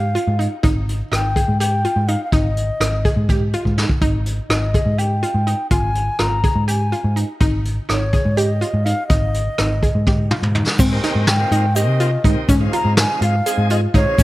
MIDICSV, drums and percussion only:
0, 0, Header, 1, 2, 480
1, 0, Start_track
1, 0, Tempo, 483871
1, 634, Time_signature, 7, 3, 24, 8
1, 14116, End_track
2, 0, Start_track
2, 0, Title_t, "Drums"
2, 157, Note_on_c, 9, 42, 43
2, 257, Note_off_c, 9, 42, 0
2, 399, Note_on_c, 9, 42, 50
2, 498, Note_off_c, 9, 42, 0
2, 634, Note_on_c, 9, 36, 88
2, 637, Note_on_c, 9, 42, 61
2, 733, Note_off_c, 9, 36, 0
2, 736, Note_off_c, 9, 42, 0
2, 880, Note_on_c, 9, 42, 53
2, 980, Note_off_c, 9, 42, 0
2, 1118, Note_on_c, 9, 37, 84
2, 1118, Note_on_c, 9, 42, 74
2, 1218, Note_off_c, 9, 37, 0
2, 1218, Note_off_c, 9, 42, 0
2, 1350, Note_on_c, 9, 36, 65
2, 1353, Note_on_c, 9, 42, 55
2, 1450, Note_off_c, 9, 36, 0
2, 1453, Note_off_c, 9, 42, 0
2, 1594, Note_on_c, 9, 42, 70
2, 1693, Note_off_c, 9, 42, 0
2, 1832, Note_on_c, 9, 42, 49
2, 1931, Note_off_c, 9, 42, 0
2, 2065, Note_on_c, 9, 42, 53
2, 2165, Note_off_c, 9, 42, 0
2, 2303, Note_on_c, 9, 42, 61
2, 2305, Note_on_c, 9, 36, 79
2, 2402, Note_off_c, 9, 42, 0
2, 2405, Note_off_c, 9, 36, 0
2, 2548, Note_on_c, 9, 42, 47
2, 2647, Note_off_c, 9, 42, 0
2, 2787, Note_on_c, 9, 37, 87
2, 2787, Note_on_c, 9, 42, 66
2, 2886, Note_off_c, 9, 37, 0
2, 2886, Note_off_c, 9, 42, 0
2, 3026, Note_on_c, 9, 36, 67
2, 3028, Note_on_c, 9, 42, 52
2, 3125, Note_off_c, 9, 36, 0
2, 3127, Note_off_c, 9, 42, 0
2, 3262, Note_on_c, 9, 42, 54
2, 3264, Note_on_c, 9, 36, 79
2, 3362, Note_off_c, 9, 42, 0
2, 3363, Note_off_c, 9, 36, 0
2, 3504, Note_on_c, 9, 42, 44
2, 3603, Note_off_c, 9, 42, 0
2, 3624, Note_on_c, 9, 36, 38
2, 3723, Note_off_c, 9, 36, 0
2, 3747, Note_on_c, 9, 38, 50
2, 3846, Note_off_c, 9, 38, 0
2, 3863, Note_on_c, 9, 36, 69
2, 3963, Note_off_c, 9, 36, 0
2, 3983, Note_on_c, 9, 36, 80
2, 3985, Note_on_c, 9, 42, 57
2, 4083, Note_off_c, 9, 36, 0
2, 4084, Note_off_c, 9, 42, 0
2, 4224, Note_on_c, 9, 42, 51
2, 4323, Note_off_c, 9, 42, 0
2, 4465, Note_on_c, 9, 37, 99
2, 4465, Note_on_c, 9, 42, 69
2, 4564, Note_off_c, 9, 37, 0
2, 4564, Note_off_c, 9, 42, 0
2, 4706, Note_on_c, 9, 36, 65
2, 4707, Note_on_c, 9, 42, 49
2, 4805, Note_off_c, 9, 36, 0
2, 4806, Note_off_c, 9, 42, 0
2, 4948, Note_on_c, 9, 42, 65
2, 5047, Note_off_c, 9, 42, 0
2, 5187, Note_on_c, 9, 42, 45
2, 5287, Note_off_c, 9, 42, 0
2, 5426, Note_on_c, 9, 42, 46
2, 5525, Note_off_c, 9, 42, 0
2, 5660, Note_on_c, 9, 42, 66
2, 5663, Note_on_c, 9, 36, 77
2, 5759, Note_off_c, 9, 42, 0
2, 5763, Note_off_c, 9, 36, 0
2, 5903, Note_on_c, 9, 42, 56
2, 6002, Note_off_c, 9, 42, 0
2, 6140, Note_on_c, 9, 37, 84
2, 6140, Note_on_c, 9, 42, 66
2, 6239, Note_off_c, 9, 37, 0
2, 6239, Note_off_c, 9, 42, 0
2, 6386, Note_on_c, 9, 36, 71
2, 6386, Note_on_c, 9, 42, 55
2, 6485, Note_off_c, 9, 36, 0
2, 6486, Note_off_c, 9, 42, 0
2, 6629, Note_on_c, 9, 42, 67
2, 6728, Note_off_c, 9, 42, 0
2, 6868, Note_on_c, 9, 42, 47
2, 6968, Note_off_c, 9, 42, 0
2, 7108, Note_on_c, 9, 42, 48
2, 7208, Note_off_c, 9, 42, 0
2, 7348, Note_on_c, 9, 36, 87
2, 7349, Note_on_c, 9, 42, 65
2, 7448, Note_off_c, 9, 36, 0
2, 7448, Note_off_c, 9, 42, 0
2, 7591, Note_on_c, 9, 42, 54
2, 7690, Note_off_c, 9, 42, 0
2, 7831, Note_on_c, 9, 37, 82
2, 7831, Note_on_c, 9, 42, 62
2, 7930, Note_off_c, 9, 37, 0
2, 7930, Note_off_c, 9, 42, 0
2, 8069, Note_on_c, 9, 36, 69
2, 8069, Note_on_c, 9, 42, 52
2, 8168, Note_off_c, 9, 36, 0
2, 8168, Note_off_c, 9, 42, 0
2, 8311, Note_on_c, 9, 42, 64
2, 8410, Note_off_c, 9, 42, 0
2, 8549, Note_on_c, 9, 42, 50
2, 8648, Note_off_c, 9, 42, 0
2, 8791, Note_on_c, 9, 42, 54
2, 8890, Note_off_c, 9, 42, 0
2, 9027, Note_on_c, 9, 42, 64
2, 9028, Note_on_c, 9, 36, 89
2, 9126, Note_off_c, 9, 42, 0
2, 9127, Note_off_c, 9, 36, 0
2, 9268, Note_on_c, 9, 42, 55
2, 9367, Note_off_c, 9, 42, 0
2, 9506, Note_on_c, 9, 37, 96
2, 9506, Note_on_c, 9, 42, 74
2, 9605, Note_off_c, 9, 37, 0
2, 9605, Note_off_c, 9, 42, 0
2, 9748, Note_on_c, 9, 36, 62
2, 9752, Note_on_c, 9, 42, 55
2, 9847, Note_off_c, 9, 36, 0
2, 9851, Note_off_c, 9, 42, 0
2, 9987, Note_on_c, 9, 36, 82
2, 9988, Note_on_c, 9, 48, 43
2, 10086, Note_off_c, 9, 36, 0
2, 10087, Note_off_c, 9, 48, 0
2, 10226, Note_on_c, 9, 47, 57
2, 10325, Note_off_c, 9, 47, 0
2, 10346, Note_on_c, 9, 45, 48
2, 10446, Note_off_c, 9, 45, 0
2, 10465, Note_on_c, 9, 43, 69
2, 10564, Note_off_c, 9, 43, 0
2, 10585, Note_on_c, 9, 38, 63
2, 10684, Note_off_c, 9, 38, 0
2, 10705, Note_on_c, 9, 36, 105
2, 10706, Note_on_c, 9, 49, 92
2, 10707, Note_on_c, 9, 82, 61
2, 10804, Note_off_c, 9, 36, 0
2, 10806, Note_off_c, 9, 49, 0
2, 10806, Note_off_c, 9, 82, 0
2, 10946, Note_on_c, 9, 38, 35
2, 10946, Note_on_c, 9, 42, 64
2, 11045, Note_off_c, 9, 38, 0
2, 11045, Note_off_c, 9, 42, 0
2, 11181, Note_on_c, 9, 38, 111
2, 11181, Note_on_c, 9, 42, 73
2, 11280, Note_off_c, 9, 38, 0
2, 11280, Note_off_c, 9, 42, 0
2, 11424, Note_on_c, 9, 42, 59
2, 11523, Note_off_c, 9, 42, 0
2, 11664, Note_on_c, 9, 42, 79
2, 11669, Note_on_c, 9, 82, 58
2, 11763, Note_off_c, 9, 42, 0
2, 11768, Note_off_c, 9, 82, 0
2, 11905, Note_on_c, 9, 42, 50
2, 11915, Note_on_c, 9, 82, 19
2, 12004, Note_off_c, 9, 42, 0
2, 12014, Note_off_c, 9, 82, 0
2, 12146, Note_on_c, 9, 36, 75
2, 12148, Note_on_c, 9, 42, 57
2, 12245, Note_off_c, 9, 36, 0
2, 12247, Note_off_c, 9, 42, 0
2, 12386, Note_on_c, 9, 42, 71
2, 12387, Note_on_c, 9, 36, 87
2, 12395, Note_on_c, 9, 82, 59
2, 12486, Note_off_c, 9, 36, 0
2, 12486, Note_off_c, 9, 42, 0
2, 12494, Note_off_c, 9, 82, 0
2, 12627, Note_on_c, 9, 42, 63
2, 12726, Note_off_c, 9, 42, 0
2, 12867, Note_on_c, 9, 38, 101
2, 12867, Note_on_c, 9, 42, 83
2, 12966, Note_off_c, 9, 38, 0
2, 12966, Note_off_c, 9, 42, 0
2, 13110, Note_on_c, 9, 42, 63
2, 13209, Note_off_c, 9, 42, 0
2, 13350, Note_on_c, 9, 42, 72
2, 13362, Note_on_c, 9, 82, 54
2, 13450, Note_off_c, 9, 42, 0
2, 13461, Note_off_c, 9, 82, 0
2, 13589, Note_on_c, 9, 42, 57
2, 13599, Note_on_c, 9, 82, 19
2, 13688, Note_off_c, 9, 42, 0
2, 13698, Note_off_c, 9, 82, 0
2, 13831, Note_on_c, 9, 36, 78
2, 13832, Note_on_c, 9, 42, 60
2, 13930, Note_off_c, 9, 36, 0
2, 13931, Note_off_c, 9, 42, 0
2, 14070, Note_on_c, 9, 42, 79
2, 14071, Note_on_c, 9, 36, 110
2, 14077, Note_on_c, 9, 82, 56
2, 14116, Note_off_c, 9, 36, 0
2, 14116, Note_off_c, 9, 42, 0
2, 14116, Note_off_c, 9, 82, 0
2, 14116, End_track
0, 0, End_of_file